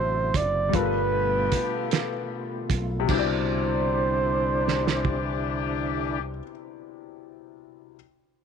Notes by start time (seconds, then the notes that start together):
Already playing: A1 C3 D3 F#3 C4 E4 F#4 A4 C5 E5
0.34 F#1 D5, kick, closed hi-hat
0.69 G3 F4
0.73 G1 B2 D3 A3 B3 F4 G4 A4 B4, kick, closed hi-hat
0.79 A#4
0.85 B4
1.52 kick, closed hi-hat
1.91 snare, closed hi-hat
2.70 B1, kick, closed hi-hat
3.00 C3
3.06 C2 B2 D3 E3 D4 E4 G4 C5, kick, crash
3.13 E4
3.19 D5
4.68 snare
4.87 snare
5.05 kick